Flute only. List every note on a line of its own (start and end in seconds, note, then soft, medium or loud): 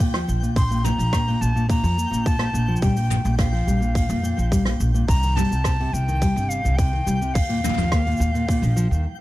0.57 0.86 C6 loud
0.85 1.43 A#5 loud
1.41 1.69 A5 loud
1.70 2.28 A#5 loud
2.27 2.82 A5 loud
2.83 3.35 G5 medium
3.39 4.77 F5 medium
5.08 5.38 A#5 loud
5.36 5.95 A5 loud
5.93 6.50 G5 loud
6.49 6.78 F5 medium
6.77 7.36 G5 loud
7.34 9.04 F5 medium